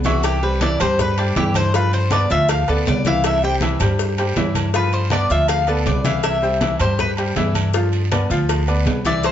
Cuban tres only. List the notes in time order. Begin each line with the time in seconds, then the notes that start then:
0.05 F#4
0.25 G4
0.43 B4
0.62 D5
0.81 C5
1.01 B4
1.19 D4
1.37 G4
1.56 C5
1.75 B4
1.94 C5
2.13 D5
2.31 E5
2.50 F5
2.69 A4
2.88 D5
3.07 F5
3.26 E5
3.44 G5
4.76 B4
4.94 C5
5.13 D5
5.31 E5
5.49 F5
5.68 A4
5.87 D5
6.05 F5
6.24 E5
6.81 C5
7.00 B4
9.06 D5
9.25 C5